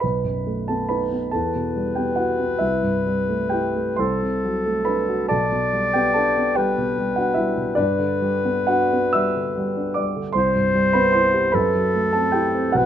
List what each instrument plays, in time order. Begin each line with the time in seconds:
0.00 grand piano B1 B4 B5
0.24 grand piano F#2
0.47 grand piano A3
0.68 grand piano B3 A4 A5
0.89 grand piano D#4 B4 B5
1.12 grand piano B3
1.31 grand piano E2 A4 A5, clarinet B4
1.55 grand piano B2
1.76 grand piano G3
1.95 grand piano B3 G4 G5
2.16 grand piano E4 F#4 F#5
2.40 grand piano B3
2.59 grand piano C2 E4 E5
2.83 grand piano G2
3.06 grand piano G3
3.28 grand piano A3
3.50 grand piano E4 G4 G5
3.75 grand piano A3
3.96 grand piano C2 C5 C6, clarinet A4
4.23 grand piano C3
4.45 grand piano F#3
4.66 grand piano A3
4.85 grand piano D4 B4 B5
5.09 grand piano F#4
5.28 grand piano B1 A4 A5, clarinet D5
5.52 grand piano B2
5.73 grand piano G3
5.94 grand piano B3 G4 G5
6.14 grand piano D4 A4 A5
6.38 grand piano B3
6.55 grand piano G3 G4 G5, clarinet B4
6.78 grand piano B2
6.98 grand piano G3
7.16 grand piano D4 F#4 F#5
7.34 grand piano G3 E4 E5
7.57 grand piano B2
7.75 grand piano G2 D4 D5, clarinet B4
7.99 grand piano D3
8.22 grand piano G3
8.45 grand piano B3
8.67 grand piano D4 F#4 F#5
8.93 grand piano B3
9.13 grand piano G3 E5 E6
9.36 grand piano D3
9.58 grand piano G3
9.77 grand piano D4
9.94 grand piano G3 D5 D6
10.16 grand piano D3
10.33 grand piano C2 C5 C6, clarinet C5
10.55 grand piano G2
10.75 grand piano G3
10.93 grand piano B3 B4 B5
11.12 grand piano E4 C5 C6
11.34 grand piano G4
11.52 grand piano F#2 B4 B5, clarinet A4
11.75 grand piano F#3
11.94 grand piano A3
12.13 grand piano C4 A4 A5
12.32 grand piano E4 G4 G5
12.55 grand piano C4
12.72 grand piano B1 F#4 F#5
12.76 clarinet B4